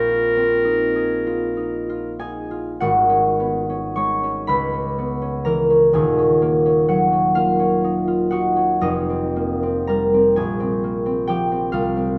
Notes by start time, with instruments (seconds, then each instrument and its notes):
Already playing: harp A#1 A#3 C4, clarinet A#4
0.09 harp F4
0.37 harp C4
0.65 harp D#4
0.96 harp G#4
1.27 harp F4
1.57 harp D#4
1.89 harp F4
2.19 harp D#4 G#4 G#5
2.51 harp F4
2.80 harp G#1 F#4 F#5
3.09 harp C#4
3.40 harp B3
3.70 harp C#4
3.96 harp G#3 C#5 C#6
4.23 harp C#4
4.47 harp C#2 B4 B5
4.73 harp C#4
4.99 harp B3
5.22 harp C#4
5.45 harp E3 A#4 A#5
5.70 harp C#4
5.93 harp D#1 D#2 G#4 G#5
6.18 harp C#4
6.42 harp A#3
6.66 harp C#4
6.89 harp F#3 F#4 F#5
7.13 harp C#4
7.35 harp A#3 F4 F5
7.59 harp C#4
7.84 harp D#4
8.08 harp F4
8.31 harp D#4 F#4 F#5
8.56 harp C#4
8.81 harp F1 F2 D#4 D#5
9.10 harp C4
9.36 harp A#3
9.63 harp C4
9.87 harp G3 A#4 A#5
10.14 harp C4
10.36 harp A#1 G#4 G#5
10.60 harp C4
10.84 harp A#3
11.06 harp C4
11.27 harp F3 G4 G5
11.52 harp C4
11.72 harp C2 F4 F5
11.96 harp C4